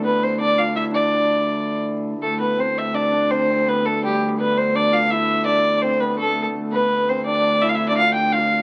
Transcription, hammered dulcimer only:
X:1
M:3/4
L:1/16
Q:1/4=166
K:Ddor
V:1 name="Hammered dulcimer"
B,4 D2 F2 E2 D2- | D8 z4 | A,2 B,2 C4 D2 D2 | C2 C2 B,2 A,2 G,3 z |
B,4 D2 F2 E4 | D4 C2 B,2 A,3 z | z2 B,2 B,2 C2 D4 | E3/2 E3/2 D F2 G2 F4 |]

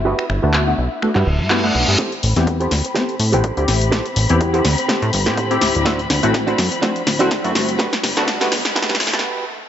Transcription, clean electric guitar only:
X:1
M:4/4
L:1/16
Q:"Swing 16ths" 1/4=124
K:Ador
V:1 name="Clean electric guitar"
[FGB]2 z6 z [FGB] z2 [FGB] z3 | [GAc] z4 [GAc] z2 [GAc]2 z [GAc]3 z2 | [GAc] z4 [GAc] z2 [GAc]2 z [GAc]3 z2 | [DFc] z4 [DFc] z2 [DFc]2 z [DFc]3 z2 |
[FGB] z4 [FGB] z2 [FGB]2 z [FGB]3 z2 |]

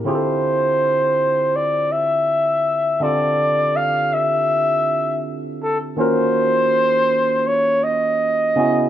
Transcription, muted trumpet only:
X:1
M:4/4
L:1/8
Q:"Swing 16ths" 1/4=81
K:Dm
V:1 name="Muted trumpet"
c4 d e3 | d2 f e3 z A | c4 _d _e3 |]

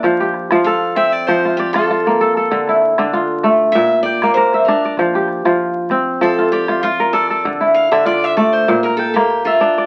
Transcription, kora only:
X:1
M:4/4
L:1/16
Q:"Swing 16ths" 1/4=97
K:F
V:1 name="Kora"
d G2 F A3 z2 F d2 F B,2 A- | A E2 D F3 z3 g2 B e2 d- | d G2 F3 z3 F d2 F B2 A- | A E2 D F3 z2 B g3 e2 d |]
V:2 name="Kora" clef=bass
F,2 z F,2 z C2 F,2 z F2 z A2 | D,2 z D,2 z A,2 B,,2 z B,2 z D2 | F,2 z F,2 z C2 F,2 z F2 z A2 | D,2 z D,2 z A,2 B,,2 z B,2 z D2 |]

